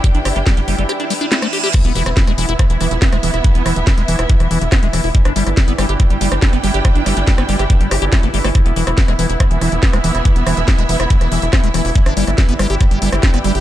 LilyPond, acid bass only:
\new Staff \with { instrumentName = "Acid bass" } { \clef bass \time 4/4 \tempo 4 = 141 g16 d'16 g'16 g16 g16 g16 g16 g16 g'16 d'16 g16 d'16 a16 a16 g'16 g'16 | e16 b16 e16 e16 e16 gis16 e16 e'16 e16 e16 e16 e16 b16 gis16 e16 e'16 | e16 b16 e16 e16 e16 gis16 e16 e'16 e16 e16 e16 r16 b16 gis16 e16 e'16 | g16 d'16 g16 g16 g16 b16 g16 g'16 g16 g16 g16 r16 d'16 b16 g16 g'16 |
g16 d'16 g16 g16 g16 b16 g16 g'16 g16 g16 g'16 g'16 g16 a16 g16 a16 | e16 b16 e16 r16 e16 gis16 e16 e'16 e16 e16 e16 e16 b16 gis16 e16 e'16 | e16 b16 e16 e16 e16 gis16 e16 e'16 e16 e16 e16 e16 b16 gis16 e16 e'16 | g16 d'16 g16 g16 g16 b16 g16 g'16 g16 g16 g16 g16 d'16 b16 g16 g'16 | }